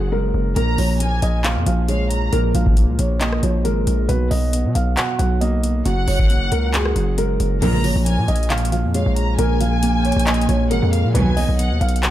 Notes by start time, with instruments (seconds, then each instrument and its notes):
Already playing: 808-style bass F#1, felt piano F#2 F#3 A#3
0.12 felt piano G#3 A#4
0.34 808-style bass F#1
0.56 808-style bass A#1, felt piano A#2 A#4, violin section A#5, closed hi-hat
0.78 808-style bass A#1, felt piano F3 C#5, open hi-hat
1.00 felt piano A#3, violin section G#5, closed hi-hat
1.22 808-style bass A#1, felt piano D#5, closed hi-hat
1.44 felt piano A#2 F5, clap, closed hi-hat
1.56 808-style bass F2
1.66 808-style bass A#1, felt piano F3 F5, closed hi-hat
1.88 felt piano G#3 C#5, violin section F5, closed hi-hat
2.11 violin section A#5, closed hi-hat
2.33 808-style bass A#1, felt piano A#2 A#4, closed hi-hat
2.55 808-style bass A#1, felt piano F3 F5, closed hi-hat
2.66 kick
2.77 felt piano A#3, closed hi-hat
2.88 808-style bass C#2
2.99 808-style bass A#1, felt piano C#5, closed hi-hat
3.21 felt piano A#2 D#5, clap, closed hi-hat
3.33 cross-stick
3.43 808-style bass A#1, felt piano F3 C#5, closed hi-hat
3.64 808-style bass G#1, felt piano G#3 A#4, closed hi-hat
3.87 808-style bass A#1, closed hi-hat
4.09 808-style bass B1, felt piano B2 B4, closed hi-hat
4.31 808-style bass B1, felt piano F#3 D#5, open hi-hat
4.53 felt piano B3, closed hi-hat
4.65 808-style bass B2
4.75 808-style bass B1, felt piano F5, closed hi-hat
4.97 felt piano B2 F#5, clap, closed hi-hat
5.19 808-style bass B1, felt piano F#3 F#5, closed hi-hat
5.41 felt piano A#3 D#5, closed hi-hat
5.63 closed hi-hat
5.85 808-style bass F#1, felt piano F#2 F#4, violin section F#5, closed hi-hat
6.08 808-style bass F#1, felt piano F#3 C#5, open hi-hat
6.19 kick
6.30 felt piano A#3, closed hi-hat
6.52 808-style bass C#2, felt piano A#4, closed hi-hat
6.74 felt piano F#2 G#4, clap, closed hi-hat
6.85 cross-stick
6.96 808-style bass F#1, felt piano F#3, closed hi-hat
7.18 felt piano G#3 A#4, closed hi-hat
7.40 808-style bass F#1, closed hi-hat
7.62 808-style bass A#1, string section C#2 A#2 F3, felt piano A#2 A#4, violin section A#5, closed hi-hat, crash
7.84 808-style bass G#1, felt piano F3 C#5, open hi-hat
7.96 808-style bass A#1
8.06 felt piano A#3, violin section G#5, closed hi-hat
8.18 808-style bass A#2
8.28 808-style bass A#1, felt piano D#5, closed hi-hat
8.36 closed hi-hat
8.43 closed hi-hat
8.50 felt piano A#2 F5, clap, closed hi-hat
8.58 closed hi-hat
8.65 closed hi-hat
8.72 felt piano F3 F5, closed hi-hat
8.84 808-style bass F2
8.94 felt piano G#3 C#5, violin section F5, closed hi-hat
9.06 808-style bass A#1
9.16 violin section A#5, closed hi-hat
9.38 808-style bass A#1, felt piano A#2 A#4, violin section G#5, closed hi-hat
9.61 felt piano F3 F5, closed hi-hat
9.83 felt piano A#3, closed hi-hat
10.05 felt piano C#5, closed hi-hat
10.12 closed hi-hat
10.16 808-style bass A#1, closed hi-hat
10.26 felt piano A#2 D#5, clap, closed hi-hat
10.34 closed hi-hat
10.42 closed hi-hat
10.49 808-style bass A#1, felt piano F3 C#5, closed hi-hat
10.70 808-style bass G#1, felt piano G#3 A#4, violin section F#5, closed hi-hat
10.82 808-style bass F2
10.93 violin section F5, closed hi-hat
11.05 808-style bass A#2
11.14 808-style bass B1, string section D#2 B2 F#3, felt piano B2 B4, violin section G#5, closed hi-hat
11.36 felt piano F#3 D#5, open hi-hat
11.49 808-style bass B1
11.59 felt piano B3, violin section F#5, closed hi-hat
11.71 808-style bass D#2
11.81 808-style bass B1, felt piano F5, closed hi-hat
11.89 closed hi-hat
11.96 closed hi-hat
12.03 felt piano B2 F#5, clap, closed hi-hat